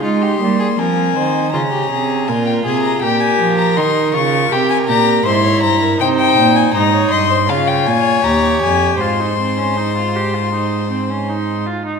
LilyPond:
<<
  \new Staff \with { instrumentName = "Violin" } { \time 4/4 \key aes \major \tempo 4 = 80 c'''4 aes''4 bes''4 aes''16 g''16 aes''16 bes''16 | g''16 aes''8 bes''16 c'''8 des'''8 g''16 aes''16 bes''8 c'''8 bes''8 | g''16 g''8 aes''16 bes''8 c'''8 f''16 g''16 aes''8 bes''8 aes''8 | c'''2.~ c'''8 r8 | }
  \new Staff \with { instrumentName = "Violin" } { \time 4/4 \key aes \major f'16 g'8 aes'16 bes'8 c''8 f'16 g'16 aes'8 bes'8 aes'8 | bes'2 bes'4 c''16 des''16 c''16 bes'16 | c''4 c''16 des''16 ees''16 c''16 des''2 | c''2.~ c''8 r8 | }
  \new Staff \with { instrumentName = "Viola" } { \time 4/4 \key aes \major ees'8 bes8 c'4 des'4 f'4 | g'4 ees'8 f'8 g'8 g'8 e'4 | ees'4 ees'4 f'4 g'4 | f'16 ees'16 c'16 des'16 ees'16 f'16 g'16 f'16 ees'8 c'16 des'16 ees'8 f'16 ees'16 | }
  \new Staff \with { instrumentName = "Cello" } { \clef bass \time 4/4 \key aes \major aes8 g8 f8 ees8 des8 c8 bes,8 c8 | bes,8 f8 ees8 des8 c8 bes,8 aes,8 g,8 | c8 bes,8 aes,8 g,8 des8 bes,8 ees,8 f,8 | aes,2.~ aes,8 r8 | }
>>